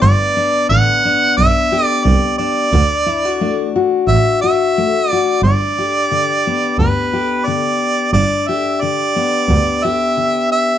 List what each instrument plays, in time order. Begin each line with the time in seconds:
Already playing: steel-string acoustic guitar D4
0.02 double bass G1, steel-string acoustic guitar G2 B3, harmonica D5
0.37 steel-string acoustic guitar D4
0.70 double bass A1, steel-string acoustic guitar D3 B3, harmonica F#5
1.05 steel-string acoustic guitar D4
1.37 double bass B1, steel-string acoustic guitar G2, harmonica E5
1.72 steel-string acoustic guitar G4
1.85 harmonica D5
2.05 double bass C2, steel-string acoustic guitar D3, harmonica D5
2.38 steel-string acoustic guitar D4, harmonica D5
2.73 double bass D2, steel-string acoustic guitar D3 D4
3.06 steel-string acoustic guitar E4
3.25 steel-string acoustic guitar F#4
3.41 steel-string acoustic guitar A3 D4
3.76 steel-string acoustic guitar F#4
4.08 double bass A1, steel-string acoustic guitar A2, harmonica E5
4.42 steel-string acoustic guitar F#4, harmonica E5
4.78 steel-string acoustic guitar A3
5.10 steel-string acoustic guitar F#4, harmonica D5
5.43 double bass G1, steel-string acoustic guitar G2 D4, harmonica D5
5.78 steel-string acoustic guitar G4
6.11 steel-string acoustic guitar D3
6.47 steel-string acoustic guitar B3
6.79 double bass D2, steel-string acoustic guitar G2, harmonica B4
7.13 steel-string acoustic guitar G4
7.46 steel-string acoustic guitar D3, harmonica D5
8.13 double bass G1, steel-string acoustic guitar G2 D4, harmonica D5
8.48 steel-string acoustic guitar G4, harmonica E5
8.81 steel-string acoustic guitar D3, harmonica D5
9.16 steel-string acoustic guitar B3
9.49 double bass D2, steel-string acoustic guitar G2
9.84 steel-string acoustic guitar G4, harmonica E5
10.17 steel-string acoustic guitar D3
10.52 harmonica E5